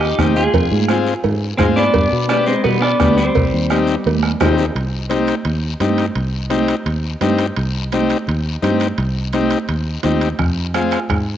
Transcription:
Already playing: fingered electric bass D#2, clean electric guitar D#4 G4
0.01 bombo rim
0.18 fingered electric bass D#2, transistor combo organ C4 D#4 G4, bombo low, bombo rim, high conga, short guiro
0.36 clean electric guitar F4 G#4, high conga, short guiro
0.53 fingered electric bass F2, bombo low, cowbell, high conga, low conga, long guiro
0.71 fingered electric bass G#2, high conga
0.88 transistor combo organ C4 F4 G#4, bombo rim, high conga, short guiro
1.07 short guiro
1.23 fingered electric bass G#2, cowbell, high conga, low conga, long guiro
1.57 fingered electric bass G#2, clean electric guitar G#3 C4, transistor combo organ C4 F4 G#4, bombo low, bombo rim, high conga, short guiro
1.76 clean electric guitar B3 D4, short guiro
1.94 fingered electric bass G2, bombo low, cowbell, high conga, long guiro
2.12 fingered electric bass B2
2.29 clean electric guitar B3 D4, transistor combo organ B3 D4 G4, bombo rim, high conga, short guiro
2.46 clean electric guitar G#3 C4, short guiro
2.64 fingered electric bass B2, clean electric guitar G3 B3, cowbell, high conga, low conga, long guiro
2.81 clean electric guitar B3 D4, bombo rim
3.00 fingered electric bass D2, transistor combo organ B3 D4 G4, bombo low, bombo rim, high conga, short guiro
3.17 clean electric guitar G3 C4, high conga, short guiro
3.35 fingered electric bass C2, bombo low, cowbell, high conga, long guiro
3.53 fingered electric bass D#2
3.70 transistor combo organ C4 D#4 G4, bombo rim, high conga, short guiro
3.87 short guiro
3.95 clean electric guitar B3
4.04 fingered electric bass D#2, cowbell, high conga, long guiro
4.23 bombo rim
4.40 fingered electric bass D#2, transistor combo organ C4 D#4 G4, bombo low, bombo rim, low conga, low timbale, short guiro
4.58 low conga, short guiro
4.75 fingered electric bass C2, high conga, high timbale, long guiro
5.09 transistor combo organ C4 D#4 G4, high conga, high timbale, short guiro
5.27 high timbale, short guiro
5.45 fingered electric bass D#2, high conga, high timbale, long guiro
5.80 fingered electric bass G2, transistor combo organ C4 D#4 G4, high conga, high timbale, short guiro
5.98 high timbale, short guiro
6.15 fingered electric bass C2, high conga, high timbale, long guiro
6.50 transistor combo organ C4 D#4 G4, high conga, high timbale, short guiro
6.68 high timbale, short guiro
6.86 fingered electric bass D#2, high conga, high timbale, long guiro
7.21 fingered electric bass G2, transistor combo organ C4 D#4 G4, high conga, high timbale, short guiro
7.39 high timbale, short guiro
7.56 fingered electric bass C2, high conga, high timbale, long guiro
7.92 transistor combo organ C4 D#4 G4, high conga, high timbale, short guiro
8.10 high timbale, short guiro
8.27 fingered electric bass D#2, high conga, high timbale, long guiro
8.62 fingered electric bass G2, transistor combo organ C4 D#4 G4, high conga, high timbale, short guiro
8.80 high timbale, short guiro
8.98 fingered electric bass C2, high timbale, long guiro
9.33 transistor combo organ C4 D#4 G4, high conga, high timbale, short guiro
9.50 high timbale, short guiro
9.68 fingered electric bass D#2, high timbale, long guiro
10.03 fingered electric bass D#2, transistor combo organ C4 D#4 G4, high conga, high timbale, low timbale, short guiro
10.21 high timbale, short guiro
10.39 fingered electric bass F2, bombo low, bombo rim, high conga, high timbale, long guiro
10.74 transistor combo organ C4 F4 G#4, bombo rim, high conga, high timbale, short guiro
10.91 bombo rim, high timbale, short guiro
11.09 fingered electric bass G#2, bombo low, bombo rim, high timbale, long guiro

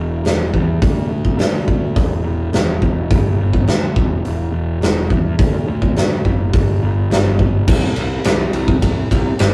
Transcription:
Already playing: picked electric bass E1
0.25 picked electric bass E1, snare, open hi-hat
0.54 picked electric bass E2, kick
0.82 picked electric bass D2, kick, open hi-hat
1.10 picked electric bass D2
1.25 kick
1.38 picked electric bass D2, snare, open hi-hat
1.68 picked electric bass D2, kick
1.96 picked electric bass E1, kick, open hi-hat
2.24 picked electric bass E1
2.53 picked electric bass E1, snare, open hi-hat
2.82 picked electric bass E1, kick
3.11 picked electric bass G1, kick, open hi-hat
3.38 picked electric bass G1
3.53 kick
3.67 picked electric bass D2, snare, open hi-hat
3.96 picked electric bass E1, kick
4.25 picked electric bass E1, open hi-hat
4.52 picked electric bass E1
4.81 picked electric bass E1, snare, open hi-hat
5.10 picked electric bass E2, kick
5.39 picked electric bass D2, kick, open hi-hat
5.68 picked electric bass D2
5.82 kick
5.96 picked electric bass D2, snare, open hi-hat
6.25 picked electric bass F#1, kick
6.53 picked electric bass G1, kick, open hi-hat
6.82 picked electric bass G1
7.10 picked electric bass G1, snare, open hi-hat
7.39 picked electric bass G1, kick
7.68 picked electric bass C2, kick, crash
7.96 picked electric bass C2, ride
8.24 picked electric bass C2, snare, ride
8.53 picked electric bass C2, ride
8.68 kick
8.82 picked electric bass C2, kick, ride
9.11 picked electric bass C2, kick, ride
9.39 picked electric bass G1, snare, ride

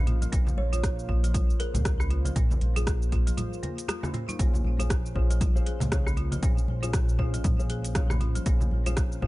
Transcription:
Already playing: analog synth bass A#1, analog synth pad A#3 F4 C5 F5
0.07 marimba F4, closed hi-hat, mid tom, muted conga
0.22 marimba F3, closed hi-hat, high conga, cabasa
0.32 analog synth bass A#1, marimba A#3, kick, closed hi-hat, cabasa
0.47 muted conga, low conga, cabasa
0.57 analog synth bass A#1, kalimba C#5, high conga
0.73 marimba F4, kalimba C#5, closed hi-hat, high conga, cabasa
0.83 kick, cross-stick, closed hi-hat, muted conga, cabasa
0.99 cabasa
1.09 marimba F4, kick
1.24 marimba F3, closed hi-hat, muted conga, cabasa
1.34 marimba F4, kick, closed hi-hat, high conga, cabasa
1.50 cabasa
1.60 marimba G#4, kalimba A#4, closed hi-hat, muted conga
1.74 analog synth bass C#2, closed hi-hat, mid tom, high conga, low conga, cabasa
1.85 kick, cross-stick, closed hi-hat, cabasa
2.00 marimba C#4, cross-stick, cabasa
2.10 marimba F4, closed hi-hat, muted conga
2.25 marimba F3, closed hi-hat, low conga, cabasa
2.36 analog synth bass A#1, marimba A#3, kick, closed hi-hat, mid tom, cabasa
2.51 muted conga, low conga, cabasa
2.61 analog synth bass A#1, closed hi-hat, high conga
2.76 marimba F4, kalimba G#4, closed hi-hat, high conga, cabasa
2.87 kick, cross-stick, closed hi-hat, cabasa
3.02 cabasa
3.12 marimba F4, kick, closed hi-hat
3.27 marimba F3, closed hi-hat, muted conga, cabasa
3.37 marimba F4, closed hi-hat, mid tom, high conga, cabasa
3.53 cabasa
3.63 marimba A#3, closed hi-hat, muted conga, low conga
3.78 closed hi-hat, cabasa
3.88 marimba F4, cross-stick, closed hi-hat, high conga, cabasa
4.03 marimba C#4, cross-stick, low conga, cabasa
4.14 marimba A#3, kalimba F4, closed hi-hat, mid tom, muted conga
4.28 marimba D#4, kalimba F4, closed hi-hat, high conga, cabasa
4.39 analog synth bass A#1, marimba A#3, felt piano C#4 F4 G#4 C5, analog synth pad C#4, kick, closed hi-hat, cabasa
4.54 muted conga, low conga, cabasa
4.64 analog synth bass A#1, high conga
4.79 felt piano C#4 F4 G#4 C5, marimba F4, closed hi-hat, high conga, cabasa
4.90 kick, cross-stick, closed hi-hat, muted conga, cabasa
5.06 cabasa
5.15 felt piano C#4 F4 G#4 C5, marimba F4, kick
5.30 marimba F3, closed hi-hat, muted conga, cabasa
5.41 marimba F4, kick, closed hi-hat, high conga, cabasa
5.56 felt piano C#4 F4 G#4 C5, cabasa
5.66 marimba G#4, closed hi-hat, muted conga
5.80 analog synth bass C#2, closed hi-hat, mid tom, high conga, low conga, cabasa
5.92 felt piano C#4 F4 G#4 C#5, kick, cross-stick, closed hi-hat, cabasa
6.07 marimba C#4, cross-stick, cabasa
6.17 marimba F4, closed hi-hat, muted conga
6.32 marimba F3, closed hi-hat, low conga, cabasa
6.43 analog synth bass A#1, marimba A#3, felt piano C#4 F4 G#4 C5, kick, closed hi-hat, cabasa
6.57 muted conga, cabasa
6.68 analog synth bass A#1, high conga
6.83 felt piano C#4 F4 G#4 C5, marimba F4, closed hi-hat, high conga, cabasa
6.93 kick, cross-stick, closed hi-hat, cabasa
7.09 cabasa
7.19 felt piano C#4 F4 G#4 C5, marimba F4, kick
7.34 marimba F3, closed hi-hat, muted conga, cabasa
7.44 analog synth bass A#1, marimba F4, kick, closed hi-hat, mid tom, high conga, cabasa
7.59 felt piano C#4 F4 G#4 C5, cabasa
7.70 marimba G#4, closed hi-hat, muted conga
7.84 closed hi-hat, cabasa
7.95 felt piano C#4 F4 G#4 C#5, kick, cross-stick, closed hi-hat, high conga, cabasa
8.10 marimba C#4, cross-stick, low conga, cabasa
8.21 marimba F4, closed hi-hat, mid tom, muted conga
8.35 marimba F3, closed hi-hat, high conga, cabasa
8.46 analog synth bass A#1, marimba A#3, felt piano C#4 F4 G#4 C5, kick, closed hi-hat, cabasa
8.61 muted conga, low conga, cabasa
8.71 analog synth bass A#1, high conga
8.86 felt piano C#4 F4 G#4 C5, marimba F4, closed hi-hat, high conga, cabasa
8.97 kick, cross-stick, closed hi-hat, muted conga, cabasa
9.12 cabasa
9.22 felt piano C#4 F4 G#4 C5, marimba F4, kick

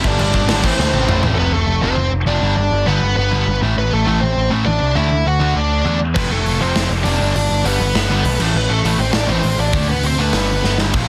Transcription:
0.04 picked electric bass G1, distorted electric guitar G2 D3 G3, lead electric guitar D4 D5, kick, crash
0.18 picked electric bass G1, distorted electric guitar G2 D3 G3, lead electric guitar D4 D5, crash
0.33 picked electric bass G1, lead electric guitar D4 D5, kick, crash
0.48 picked electric bass G#1, distorted electric guitar G2 D3 G3, snare, crash
0.63 picked electric bass A1, distorted electric guitar A2 E3 A3, lead electric guitar C4 C5, kick, crash
0.78 picked electric bass D2, distorted electric guitar A2 E3 A3, lead electric guitar C4 C5, snare
0.93 picked electric bass A1, high tom
1.07 picked electric bass A1, distorted electric guitar A2 E3 A3, mid tom
1.21 picked electric bass A1, distorted electric guitar A2 E3 A3, floor tom
1.35 picked electric bass F1, distorted electric guitar F2 C3 F3, lead electric guitar A4
1.39 lead electric guitar B3 B4
1.52 picked electric bass F1, lead electric guitar A3 A4
1.67 picked electric bass F1
1.82 picked electric bass F1, distorted electric guitar F2 C3 F3, lead electric guitar C4 C5
1.97 picked electric bass F1
2.12 picked electric bass F1
2.26 picked electric bass F1, distorted electric guitar F2 C3 F3, lead electric guitar D4 D5
2.42 picked electric bass G1, distorted electric guitar G2 D3 G3
2.56 picked electric bass G1, lead electric guitar D4 D5
2.72 picked electric bass G1
2.87 picked electric bass G1, distorted electric guitar G2 D3 G3, lead electric guitar B3 B4
3.02 picked electric bass G1
3.16 picked electric bass G1, lead electric guitar B3 B4
3.31 distorted electric guitar G2 D3 G3
3.46 picked electric bass G1
3.61 picked electric bass A1, distorted electric guitar A2 E3 A3
3.77 picked electric bass A1, lead electric guitar B3 B4
3.93 picked electric bass A1, lead electric guitar A3 A4
4.06 picked electric bass A1, distorted electric guitar A2 E3 A3
4.21 picked electric bass A1, lead electric guitar C4 C5
4.36 picked electric bass A1
4.51 picked electric bass A1, distorted electric guitar A2 E3 A3
4.66 picked electric bass A1, lead electric guitar D4 D5
4.81 picked electric bass C2
4.95 picked electric bass D2, distorted electric guitar D3 A3 D4, lead electric guitar E4 E5
5.12 picked electric bass D2
5.25 picked electric bass D2, lead electric guitar F#4 F#5
5.40 picked electric bass D2, distorted electric guitar D3 A3 D4
5.55 picked electric bass D2, lead electric guitar D4 D5
5.85 picked electric bass E2, distorted electric guitar D3 A3 D4
6.15 picked electric bass F1, distorted electric guitar F2 C3 F3, lead electric guitar B3 B4, kick, crash
6.31 picked electric bass F1, lead electric guitar A3 A4
6.46 picked electric bass F1, open hi-hat
6.60 picked electric bass F1, distorted electric guitar F2 C3 F3, lead electric guitar C4 C5
6.75 picked electric bass F1, snare, open hi-hat
6.90 picked electric bass F1
7.03 picked electric bass F1, distorted electric guitar F2 C3 F3, lead electric guitar D4 D5, open hi-hat
7.21 picked electric bass G1, distorted electric guitar G2 D3 G3
7.35 picked electric bass G1, lead electric guitar D4 D5, open hi-hat
7.50 picked electric bass G1
7.64 picked electric bass G1, distorted electric guitar G2 D3 G3, lead electric guitar B3 B4, open hi-hat
7.80 picked electric bass G1
7.94 picked electric bass G1, lead electric guitar B3 B4, snare, open hi-hat
8.10 distorted electric guitar G2 D3 G3
8.24 picked electric bass B1, open hi-hat
8.40 picked electric bass A1, distorted electric guitar A2 E3 A3, crash
8.54 picked electric bass A1, lead electric guitar B3 B4
8.69 picked electric bass A1, lead electric guitar A3 A4
8.83 picked electric bass A1, distorted electric guitar A2 E3 A3, open hi-hat
8.98 picked electric bass A1, lead electric guitar C4 C5
9.11 picked electric bass A1, lead electric guitar D4 D5, snare, open hi-hat
9.26 picked electric bass A1, distorted electric guitar A2 E3, lead electric guitar C4 C5
9.31 distorted electric guitar A3
9.43 picked electric bass A1, open hi-hat
9.58 picked electric bass A1, lead electric guitar D4 D5
9.73 picked electric bass D2, distorted electric guitar D3 A3 D4, kick, open hi-hat
9.88 picked electric bass D2, lead electric guitar B3 B4
10.03 picked electric bass D2, lead electric guitar C4 C5, open hi-hat
10.18 picked electric bass D2, distorted electric guitar D3 A3 D4, lead electric guitar B3 B4
10.33 picked electric bass G1, distorted electric guitar G2 D3 G3, snare, open hi-hat
10.64 picked electric bass G1, snare
10.78 distorted electric guitar G2 D3 G3, snare
10.93 picked electric bass A#1, distorted electric guitar A#2 F3 A#3, kick, crash

